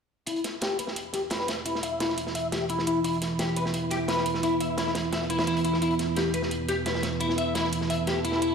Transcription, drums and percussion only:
0.26 closed hi-hat
0.36 closed hi-hat
0.44 snare, closed hi-hat
0.61 snare, closed hi-hat
0.79 closed hi-hat
0.87 snare
0.96 closed hi-hat
1.13 snare, closed hi-hat
1.30 snare, closed hi-hat
1.40 snare
1.48 snare, closed hi-hat
1.65 closed hi-hat
1.75 snare
1.83 closed hi-hat
2.00 snare, closed hi-hat
2.09 snare
2.18 closed hi-hat
2.27 snare
2.35 closed hi-hat
2.52 snare, closed hi-hat
2.69 closed hi-hat
2.79 snare
2.87 closed hi-hat
3.04 closed hi-hat
3.13 closed hi-hat
3.22 snare, closed hi-hat
3.39 snare, closed hi-hat
3.56 closed hi-hat
3.66 snare
3.74 closed hi-hat
3.90 snare, closed hi-hat
4.08 snare, closed hi-hat
4.17 snare
4.26 closed hi-hat
4.34 snare
4.43 closed hi-hat
4.61 closed hi-hat
4.78 snare, closed hi-hat
4.87 snare
4.95 snare, closed hi-hat
5.13 snare, closed hi-hat
5.22 snare
5.30 closed hi-hat
5.38 snare, closed hi-hat
5.47 snare, closed hi-hat
5.57 closed hi-hat
5.64 closed hi-hat
5.73 snare
5.82 closed hi-hat
5.91 closed hi-hat
5.99 snare, closed hi-hat
6.16 snare, closed hi-hat
6.34 closed hi-hat
6.42 snare
6.51 closed hi-hat
6.69 snare, closed hi-hat
6.86 snare, closed hi-hat
6.95 snare
7.03 snare, closed hi-hat
7.20 closed hi-hat
7.29 snare
7.38 closed hi-hat
7.55 snare, closed hi-hat
7.64 snare
7.73 closed hi-hat
7.81 snare
7.90 closed hi-hat
8.07 snare, closed hi-hat
8.24 closed hi-hat
8.32 snare
8.42 closed hi-hat

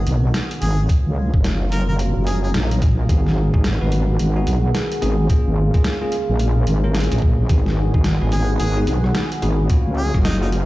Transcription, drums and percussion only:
0.07 closed hi-hat
0.34 snare, closed hi-hat
0.51 closed hi-hat
0.62 closed hi-hat
0.89 kick, closed hi-hat
1.34 kick
1.44 snare, closed hi-hat
1.72 closed hi-hat
1.99 closed hi-hat
2.27 closed hi-hat
2.54 snare, closed hi-hat
2.71 closed hi-hat
2.82 kick, closed hi-hat
3.09 kick, closed hi-hat
3.27 snare
3.54 kick
3.64 snare, closed hi-hat
3.92 closed hi-hat
4.19 closed hi-hat
4.47 closed hi-hat
4.75 snare, closed hi-hat
4.92 closed hi-hat
5.02 closed hi-hat
5.29 kick, closed hi-hat
5.74 kick, closed hi-hat
5.84 snare, closed hi-hat
6.12 closed hi-hat
6.39 closed hi-hat
6.67 closed hi-hat
6.95 snare, closed hi-hat
7.00 closed hi-hat
7.04 closed hi-hat
7.12 closed hi-hat
7.18 kick, closed hi-hat
7.49 kick, closed hi-hat
7.66 snare
7.94 kick
8.04 snare, closed hi-hat
8.32 closed hi-hat
8.60 closed hi-hat
8.87 closed hi-hat
9.04 cross-stick
9.15 snare, closed hi-hat
9.32 closed hi-hat
9.42 closed hi-hat
9.70 kick, closed hi-hat
10.14 kick, cross-stick
10.25 snare, closed hi-hat
10.52 closed hi-hat

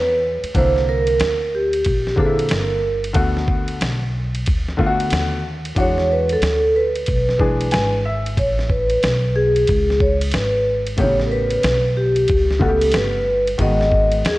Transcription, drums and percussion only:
0.44 ride
0.55 kick, ride
0.76 snare
1.07 ride
1.20 snare, hi-hat pedal, ride
1.73 ride
1.85 kick, ride
2.07 snare
2.18 kick
2.39 ride
2.49 snare, hi-hat pedal, ride
3.04 ride
3.14 kick, ride
3.37 snare
3.48 kick
3.68 ride
3.81 snare, hi-hat pedal, ride
4.34 ride
4.46 kick, ride
4.68 snare
4.79 kick
5.00 ride
5.10 snare, hi-hat pedal, ride
5.65 ride
5.76 kick, ride
5.98 snare
6.29 ride
6.42 snare, hi-hat pedal, ride
6.96 ride
7.06 kick, ride
7.29 snare
7.40 kick
7.61 ride
7.71 snare, hi-hat pedal, ride
8.26 ride
8.37 kick, ride
8.59 snare
8.70 kick
8.90 ride
9.03 snare, hi-hat pedal, ride
9.56 ride
9.68 kick, ride
9.90 snare
10.00 kick
10.21 ride
10.31 snare, hi-hat pedal, ride
10.87 ride
10.98 kick, ride
11.20 snare
11.51 ride
11.63 snare, hi-hat pedal, ride
12.16 ride
12.28 kick, ride
12.51 snare
12.61 kick
12.82 ride
12.92 snare, hi-hat pedal, ride
13.47 ride
13.59 kick, ride
13.81 snare
13.91 kick
14.12 ride
14.25 snare, hi-hat pedal, ride

